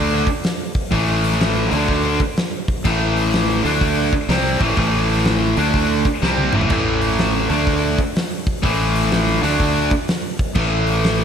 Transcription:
0.00 0.24 D2 loud
0.00 0.26 D3 medium
0.00 0.26 A3 medium
0.00 0.26 D4 loud
0.27 kick medium
0.27 open hi-hat medium
0.44 snare loud
0.44 open hi-hat medium
0.75 kick loud
0.75 open hi-hat medium
0.91 1.68 A1 medium
0.91 1.71 A2 loud
0.91 1.72 E3 loud
0.91 1.72 A3 loud
0.91 kick medium
0.91 open hi-hat medium
1.24 open hi-hat medium
1.33 snare soft
1.40 snare loud
1.40 open hi-hat medium
1.71 2.17 D2 medium
1.71 2.19 D3 medium
1.71 2.19 A3 loud
1.71 2.19 D4 loud
1.71 open hi-hat medium
1.88 kick medium
1.88 open hi-hat medium
2.20 kick medium
2.20 open hi-hat medium
2.36 snare loud
2.36 open hi-hat medium
2.68 kick loud
2.68 open hi-hat medium
2.84 3.61 A1 medium
2.84 3.63 A2 loud
2.84 3.64 E3 loud
2.84 3.63 A3 loud
2.84 kick medium
2.84 crash loud
3.16 open hi-hat medium
3.33 snare loud
3.33 open hi-hat medium
3.63 4.09 D2 loud
3.63 4.11 D3 medium
3.63 4.12 A3 loud
3.63 4.12 D4 loud
3.63 open hi-hat medium
3.81 kick medium
3.81 open hi-hat medium
4.13 kick loud
4.13 open hi-hat medium
4.29 4.58 C2 loud
4.29 4.60 C3 medium
4.29 4.60 G3 medium
4.29 4.60 C4 loud
4.29 snare loud
4.29 open hi-hat medium
4.60 4.76 A1 loud
4.60 4.76 A2 medium
4.60 4.76 E3 loud
4.60 4.77 A3 loud
4.60 kick loud
4.60 open hi-hat medium
4.77 5.53 A1 medium
4.77 5.56 A2 loud
4.77 5.56 E3 loud
4.77 5.56 A3 loud
4.77 kick loud
4.77 open hi-hat medium
5.08 open hi-hat medium
5.18 snare soft
5.25 snare loud
5.25 open hi-hat medium
5.57 6.02 D2 loud
5.57 6.04 D3 medium
5.57 6.05 A3 medium
5.57 6.05 D4 loud
5.57 open hi-hat medium
5.74 kick medium
5.74 open hi-hat medium
6.05 kick loud
6.05 open hi-hat medium
6.22 6.52 C2 loud
6.22 6.53 C3 loud
6.22 6.53 G3 medium
6.22 6.53 C4 medium
6.22 snare medium
6.38 high tom medium
6.53 6.70 A1 medium
6.53 6.69 A2 loud
6.53 6.70 E3 medium
6.53 6.71 A3 loud
6.53 mid tom loud
6.61 floor tom medium
6.70 7.46 A1 medium
6.70 7.49 A2 loud
6.70 7.50 E3 loud
6.70 7.49 A3 loud
6.70 kick loud
6.70 crash medium
7.01 open hi-hat medium
7.11 snare soft
7.18 snare loud
7.18 open hi-hat medium
7.50 7.95 D2 loud
7.50 7.97 D3 medium
7.50 7.98 A3 medium
7.50 7.98 D4 loud
7.50 open hi-hat medium
7.67 kick medium
7.67 open hi-hat medium
7.98 kick medium
7.98 open hi-hat medium
8.15 snare loud
8.15 open hi-hat medium
8.47 kick loud
8.47 open hi-hat medium
8.62 9.39 A1 medium
8.62 9.42 A2 loud
8.62 9.42 E3 loud
8.62 9.42 A3 loud
8.62 kick loud
8.62 open hi-hat medium
8.95 open hi-hat medium
9.04 snare soft
9.11 snare loud
9.11 open hi-hat medium
9.42 9.88 D2 loud
9.42 9.90 D3 medium
9.42 9.90 A3 medium
9.42 9.91 D4 loud
9.42 open hi-hat medium
9.59 kick medium
9.59 open hi-hat medium
9.91 kick medium
9.91 open hi-hat medium
10.08 snare loud
10.08 open hi-hat medium
10.39 kick loud
10.39 open hi-hat medium
10.55 11.24 A1 medium
10.55 11.24 A2 loud
10.55 11.24 E3 loud
10.55 11.24 A3 loud
10.55 kick loud
10.55 crash medium
10.87 open hi-hat medium
11.04 snare loud
11.04 open hi-hat medium

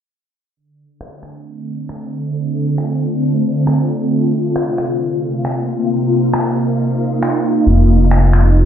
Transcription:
0.55 4.11 D3 medium
0.95 4.11 A3 medium
1.01 finger snap medium
1.17 5.40 C4 medium
1.23 finger snap medium
1.89 finger snap medium
2.02 8.65 F4 medium
2.78 finger snap loud
3.67 finger snap medium
4.11 7.67 C3 medium
4.51 7.67 A#3 medium
4.56 finger snap loud
4.78 finger snap medium
5.22 8.65 D#4 medium
5.45 finger snap medium
6.34 finger snap loud
7.23 finger snap medium
7.67 8.65 F1 medium
7.67 8.65 F3 medium
8.04 shaker medium
8.11 finger snap loud
8.33 finger snap medium
8.48 shaker soft

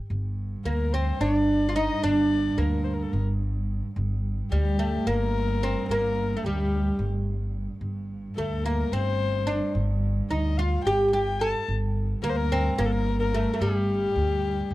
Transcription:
0.10 0.55 G1 medium
0.10 3.95 G2 medium
0.65 1.10 D2 medium
0.65 0.94 A#3 medium
0.65 0.94 A#4 medium
0.93 1.20 C4 medium
0.93 1.22 C5 medium
1.20 1.88 G1 medium
1.20 1.68 D4 medium
1.20 1.77 D5 medium
1.69 1.75 F4 medium
1.76 2.01 D#4 medium
1.76 2.05 D#5 medium
2.03 2.48 G1 medium
2.03 2.60 D4 medium
2.03 2.61 D5 medium
2.57 3.02 D2 medium
2.57 3.16 A#3 medium
2.57 2.86 A#4 medium
2.84 2.95 C5 medium
2.94 3.04 A#4 medium
3.03 3.14 A4 medium
3.12 3.80 G1 medium
3.12 3.21 A#4 medium
3.95 4.41 G1 medium
3.95 7.81 G2 medium
4.51 4.96 D2 medium
4.51 4.79 G3 medium
4.51 5.08 G4 medium
4.79 5.07 A3 medium
5.07 5.74 G1 medium
5.07 5.63 A#3 medium
5.07 5.88 A#4 medium
5.63 5.91 C4 medium
5.89 6.34 G1 medium
5.89 6.35 A#3 medium
5.89 6.38 A#4 medium
6.37 6.44 A3 medium
6.37 6.46 A4 soft
6.44 6.89 D2 medium
6.44 7.03 G3 medium
6.44 7.06 G4 medium
6.99 7.66 G1 medium
7.81 8.26 G1 medium
7.81 11.68 G2 medium
8.36 8.82 D2 medium
8.36 8.65 A3 medium
8.36 8.66 A4 medium
8.64 8.93 A#3 medium
8.64 8.94 A#4 medium
8.92 9.59 G1 medium
8.92 9.49 C4 medium
8.92 9.75 C5 medium
9.47 9.72 D4 medium
9.75 10.19 G1 medium
10.30 10.75 D2 medium
10.30 10.58 D#4 medium
10.30 10.59 D#5 medium
10.58 10.86 F4 medium
10.58 10.84 F5 medium
10.85 11.52 G1 medium
10.85 11.12 G4 medium
10.85 11.10 G5 medium
11.11 11.41 G4 medium
11.11 11.41 G5 medium
11.40 11.66 A4 medium
11.40 11.67 A5 medium
11.68 12.13 G1 medium
11.68 14.74 G2 medium
12.22 12.67 D2 medium
12.22 12.51 A#3 medium
12.22 12.31 A#4 medium
12.30 12.38 C5 medium
12.37 12.77 A#4 medium
12.52 12.79 C4 medium
12.78 13.45 G1 medium
12.78 13.34 A#3 medium
12.78 12.87 A#4 medium
12.86 12.93 A4 medium
12.92 13.19 A#4 medium
13.20 13.62 A#4 medium
13.34 13.52 A3 medium
13.54 13.60 A3 medium
13.60 14.05 G1 medium
13.60 14.74 G3 medium
13.60 14.74 G4 medium
14.16 14.60 D2 medium
14.70 14.74 G1 medium

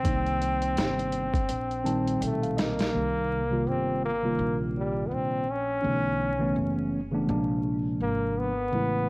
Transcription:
0.00 1.27 C3 medium
0.00 1.27 D#3 medium
0.00 2.23 C4 loud
0.05 0.74 C2 medium
0.05 1.28 G3 medium
0.05 1.28 A#3 medium
0.05 1.28 D#4 medium
0.05 kick medium
0.05 closed hi-hat medium
0.26 closed hi-hat soft
0.42 closed hi-hat medium
0.62 closed hi-hat medium
0.76 1.46 G1 medium
0.76 snare loud
0.76 closed hi-hat medium
0.99 closed hi-hat soft
1.12 closed hi-hat medium
1.34 kick medium
1.34 closed hi-hat soft
1.49 2.18 A#1 medium
1.49 closed hi-hat loud
1.71 closed hi-hat soft
1.84 2.80 A#2 medium
1.84 2.79 D#3 medium
1.84 2.79 G3 medium
1.84 2.79 C4 medium
1.84 2.80 D#4 medium
1.84 2.19 A5 medium
1.84 closed hi-hat medium
2.07 closed hi-hat soft
2.21 2.90 B1 medium
2.21 2.61 A3 medium
2.21 2.41 G5 medium
2.21 closed hi-hat loud
2.43 2.57 F5 medium
2.43 closed hi-hat soft
2.57 3.70 A#3 loud
2.57 2.91 D#5 medium
2.57 snare medium
2.57 closed hi-hat medium
2.79 snare medium
2.79 closed hi-hat medium
2.92 3.63 C2 medium
2.92 3.40 C3 medium
2.92 3.40 D#3 medium
2.92 3.41 G3 medium
2.92 3.41 A#3 medium
2.92 3.42 D#4 medium
3.50 4.09 C3 medium
3.50 4.09 D#3 medium
3.50 4.10 G3 medium
3.50 4.10 A#3 medium
3.50 4.10 F4 medium
3.67 4.35 G1 medium
3.67 4.04 C4 loud
4.05 4.60 A#3 medium
4.23 5.42 C3 medium
4.23 4.29 D3 soft
4.23 5.42 G3 medium
4.23 5.43 A#3 medium
4.23 5.43 F4 medium
4.30 5.46 D#3 medium
4.39 5.08 A#1 loud
4.77 5.09 G3 medium
5.07 5.15 B3 medium
5.11 5.80 A#1 medium
5.11 5.52 C4 loud
5.50 6.93 C#4 loud
5.82 6.53 B1 medium
5.82 6.31 D3 medium
5.82 6.30 E3 medium
5.82 6.30 A3 medium
5.82 6.30 B3 medium
5.82 6.29 C#4 medium
6.39 6.98 C#3 medium
6.39 6.98 E3 medium
6.39 6.99 A3 medium
6.39 6.99 B3 medium
6.39 6.99 C#4 loud
6.56 7.25 F#1 medium
7.11 7.27 C#3 medium
7.11 7.28 E3 medium
7.11 7.28 A3 medium
7.11 7.29 B3 medium
7.11 7.29 D4 medium
7.27 7.97 A#1 loud
7.27 8.50 C3 medium
7.27 8.50 F3 medium
7.27 8.51 G#3 medium
7.27 8.51 A#3 medium
7.27 8.52 D4 medium
8.01 8.69 G#1 medium
8.01 8.40 A#3 medium
8.38 9.09 B3 medium
8.72 9.09 A1 medium
8.72 9.09 C#3 medium
8.72 9.09 E3 medium
8.72 9.09 G#3 medium
8.72 9.09 A3 medium
8.72 9.09 E4 medium

